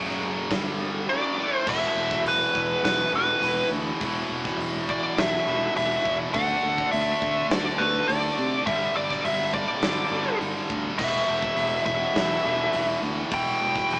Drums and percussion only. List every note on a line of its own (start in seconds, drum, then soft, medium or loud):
0.09 snare soft
0.51 kick loud
0.51 snare loud
0.51 open hi-hat medium
1.67 kick loud
1.67 crash loud
2.11 kick medium
2.11 snare soft
2.26 open hi-hat medium
2.55 kick medium
2.84 snare loud
2.84 open hi-hat medium
3.43 open hi-hat medium
4.01 kick loud
4.01 open hi-hat medium
4.45 kick medium
4.45 snare soft
4.60 open hi-hat medium
4.89 kick medium
5.18 snare loud
5.18 open hi-hat medium
5.76 open hi-hat medium
6.05 kick medium
6.34 kick loud
6.34 open hi-hat medium
6.78 kick medium
6.93 open hi-hat medium
7.22 kick medium
7.51 snare loud
7.51 open hi-hat medium
8.09 open hi-hat medium
8.67 kick loud
8.67 open hi-hat medium
9.10 kick medium
9.10 snare soft
9.25 open hi-hat medium
9.54 kick loud
9.82 snare loud
9.82 open hi-hat medium
10.41 open hi-hat medium
10.70 kick loud
10.99 kick loud
10.99 crash loud
11.42 kick loud
11.57 open hi-hat medium
11.86 kick loud
12.16 snare loud
12.16 open hi-hat medium
12.73 open hi-hat medium
13.31 kick loud
13.31 open hi-hat medium
13.76 kick loud
13.76 snare soft
13.90 open hi-hat medium